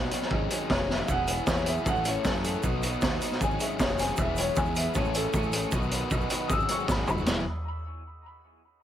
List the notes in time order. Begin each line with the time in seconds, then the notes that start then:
Already playing: B2 F#3 B3 D#4 F#4
0.11 B2 F#3 B3 D#4 F#4, closed hi-hat
0.22 snare
0.31 G#1 G#2 D#3 F#3 C4 C#4 D#4 G#4, kick
0.50 G#2 D#3 F#3 C4 C#4 D#4 G#4, closed hi-hat
0.69 F1 G#2 D#3 F#3 C4 C#4 D#4 G#4 C#5, kick, snare
0.87 G#2 D#3 F#3 C4 C#4 D#4 G#4 E5, snare
1.06 E1 E2 B2 E3 F#3 B3 E4 G#4 E5 F5 F#5 B5, kick, shaker
1.11 G#4 F#5
1.27 E2 B2 E3 F#3 B3 E4 G#4, closed hi-hat, shaker
1.37 shaker
1.47 E2 B2 E3 F#3 B3 E4 G#4 C#5, kick, snare, shaker
1.57 shaker
1.66 E2 B2 E3 F#3 B3 E4 G#4 E5, closed hi-hat, shaker
1.77 shaker
1.86 A1 A2 E3 A3 C#4 G#4 A4 F#5 G#5 C#6, kick, shaker
1.95 shaker
2.05 A2 E3 A3 C#4 G#4 A4 C#5, closed hi-hat, shaker
2.15 shaker
2.25 F#2 A2 E3 A3 C#4 G#4 A4, kick, snare, shaker
2.35 shaker
2.43 A2 E3 A3 C#4 G#4 A4, closed hi-hat, shaker
2.54 shaker
2.63 B1 B2 F#3 B3 D#4 F#4 B4 D#5 F#5 D#6, kick, shaker
2.83 B2 F#3 B3 D#4 F#4, closed hi-hat, shaker
2.93 shaker
3.01 D#2 B2 F#3 B3 D#4 F#4, kick, snare, shaker
3.21 B2 F#3 B3 D#4 F#4, closed hi-hat, shaker
3.31 snare, shaker
3.40 G#1 G#2 D#3 F#3 C4 C#4 D#4 G#4 D#5 F#5 G#5 C#6, kick, shaker
3.51 shaker
3.59 G#2 D#3 F#3 C4 C#4 D#4 G#4 E5, closed hi-hat, shaker
3.70 shaker
3.79 F1 G#2 D#3 F#3 C4 C#4 D#4 G#4 C#5, kick, snare, shaker
3.89 shaker
3.98 G#2 D#3 F#3 C4 C#4 D#4 G#4 G#5, snare, closed hi-hat, shaker
4.08 shaker
4.17 E1 E2 E3 F#3 G#3 B3 E4 G#4 E5 B5, kick, shaker
4.21 E5
4.36 E2 E3 F#3 G#3 B3 E4 G#4 C#5, closed hi-hat, shaker
4.46 shaker
4.56 E2 E3 F#3 G#3 B3 E4 G#4 G#5, kick, shaker
4.66 shaker
4.75 E2 E3 F#3 G#3 B3 E4 G#4 E5, closed hi-hat, shaker
4.94 A1 A2 E3 A3 C#4 E4 G#4 A4 C#5 E5 G#5 C#6, kick, shaker
5.04 shaker
5.14 A2 E3 A3 C#4 E4 G#4 A4, closed hi-hat, shaker
5.24 shaker
5.33 A1 A2 E3 A3 C#4 E4 G#4 A4, kick, shaker
5.43 shaker
5.52 A2 E3 A3 C#4 E4 G#4 A4, closed hi-hat, shaker
5.62 shaker
5.71 B1 B2 D#3 F#3 B3 D#4 F#4 B4 D#5 F#5 D#6, kick, shaker
5.82 shaker
5.91 B2 D#3 F#3 B3 D#4 F#4 B4, closed hi-hat
6.11 B1 B2 D#3 F#3 B3 D#4 F#4 B4, kick, shaker
6.21 shaker
6.30 B2 D#3 F#3 B3 D#4 F#4 B4, closed hi-hat, shaker
6.48 G#1 G#2 D#3 F#3 G#3 C4 C#4 D#4 F#4 G#4 C#6 D#6, kick, shaker
6.53 E6
6.60 shaker
6.68 G#2 D#3 F#3 G#3 C4 C#4 D#4 F#4 G#4 C#6, closed hi-hat, shaker
6.79 shaker
6.88 G#1 G#2 D#3 F#3 G#3 C4 C#4 D#4 F#4 G#4 B5, kick, snare, shaker
7.06 F#1 G#2 D#3 F#3 G#3 C4 C#4 D#4 F#4 A#5, floor tom, shaker
7.10 G#4 B5
7.18 shaker
7.26 E1 E2 B2 E3 F#3 G#3 B3 E4 G#4 B4 F#5, snare, floor tom, crash, shaker